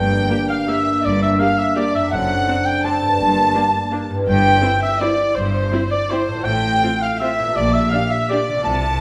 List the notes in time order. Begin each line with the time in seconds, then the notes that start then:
Already playing: G1 G2 A#3 D4 A#4 G5
0.30 A#3 G4
0.49 F5
0.67 A#3 G4 E5
1.03 G1 G2 D5
1.21 E5
1.39 A#3 G4 F5
1.58 E5
1.76 A#3 G4 D5
1.93 F#2 E5
1.99 C4
2.03 D4
2.07 A4 F#5
2.12 F#1 F#2 C4 D4 F#5
2.48 C4 D4
2.65 G5
2.84 C4 D4 A5
3.02 G2
3.06 A#3
3.10 D4
3.15 G4
3.19 G1 G2 A#3
3.55 A#3 D4
3.92 A#3 D4
4.10 G2
4.14 C4
4.19 E4
4.24 G1 A#4 G5
4.28 G2 G5
4.63 C4 E4
4.82 E5
4.99 C4 E4 D5
5.35 G1 G2 C5
5.71 C4 E4
5.91 D5
6.10 C4 E4 C5
6.27 A2
6.32 C4
6.36 F4
6.41 A4 G5
6.45 A1 A2 G5
6.82 C4 F4
7.01 F5
7.20 C4 F4 E5
7.39 A#2
7.43 A#3
7.48 D4
7.53 A#1 G4 D5
7.57 A#2 D5
7.73 E5
7.91 A#3 D4 G4 F5
8.10 E5
8.29 A#3 D4 G4 D5
8.48 C3
8.53 A3
8.57 C4
8.62 F4 A5
8.66 C2 C3 A5